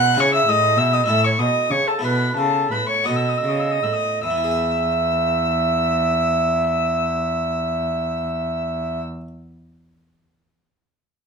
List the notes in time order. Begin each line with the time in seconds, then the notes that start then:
Already playing: B2 B3 F#4 B4 F#5 F#6
0.14 C#3 C#4 E4 G#4
0.19 C#3 C#5 C#6
0.34 E5 E6
0.47 A2 D#5 D#6
0.77 B2 E5 E6
0.93 D#5 D#6
1.06 A2 C#4 E4 A4 E5 E6
1.10 A2
1.24 C#5 C#6
1.39 B2 D#5 D#6
1.70 C#3 C#5 C#6
1.87 A4 A5
1.99 B2 B3 E4 A4
2.04 B2 B4 B5
2.36 C#3 A4 A5
2.71 A2 B4 B5
2.88 C#5 C#6
3.04 B2 B3 F#4 A4 D#5 D#6
3.09 B2
3.16 E6
3.29 D#6
3.37 E6
3.44 C#3
3.48 D#6
3.60 E6
3.71 D#6
3.83 A2 E6
3.93 D#6
4.23 E2 E3 E5 E6
4.30 B3
4.38 E4
4.44 G#4
4.51 E5